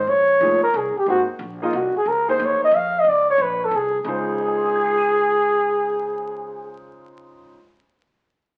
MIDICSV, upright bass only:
0, 0, Header, 1, 3, 480
1, 0, Start_track
1, 0, Key_signature, -5, "major"
1, 0, Tempo, 331675
1, 111, Time_signature, 3, 2, 24, 8
1, 12410, End_track
2, 0, Start_track
2, 0, Title_t, "Upright bass"
2, 0, Program_c, 0, 32
2, 102, Note_on_c, 0, 34, 75
2, 572, Note_off_c, 0, 34, 0
2, 587, Note_on_c, 0, 29, 89
2, 874, Note_off_c, 0, 29, 0
2, 1068, Note_on_c, 0, 36, 96
2, 1355, Note_off_c, 0, 36, 0
2, 1537, Note_on_c, 0, 32, 78
2, 1829, Note_off_c, 0, 32, 0
2, 2011, Note_on_c, 0, 34, 97
2, 2485, Note_off_c, 0, 34, 0
2, 2501, Note_on_c, 0, 36, 93
2, 2791, Note_off_c, 0, 36, 0
2, 2974, Note_on_c, 0, 37, 78
2, 3447, Note_off_c, 0, 37, 0
2, 3465, Note_on_c, 0, 39, 96
2, 3753, Note_off_c, 0, 39, 0
2, 3925, Note_on_c, 0, 41, 92
2, 4395, Note_off_c, 0, 41, 0
2, 4403, Note_on_c, 0, 37, 83
2, 4882, Note_off_c, 0, 37, 0
2, 4890, Note_on_c, 0, 34, 91
2, 5365, Note_off_c, 0, 34, 0
2, 5371, Note_on_c, 0, 36, 85
2, 5846, Note_off_c, 0, 36, 0
2, 5852, Note_on_c, 0, 37, 90
2, 10855, Note_off_c, 0, 37, 0
2, 12410, End_track
3, 0, Start_track
3, 0, Title_t, "Muted upright bass strokes"
3, 894, Note_on_c, 9, 29, 39
3, 1039, Note_off_c, 9, 29, 0
3, 1386, Note_on_c, 9, 29, 39
3, 1530, Note_off_c, 9, 29, 0
3, 1841, Note_on_c, 9, 29, 39
3, 1986, Note_off_c, 9, 29, 0
3, 2813, Note_on_c, 9, 29, 39
3, 2958, Note_off_c, 9, 29, 0
3, 3765, Note_on_c, 9, 29, 39
3, 3909, Note_off_c, 9, 29, 0
3, 12410, End_track
0, 0, End_of_file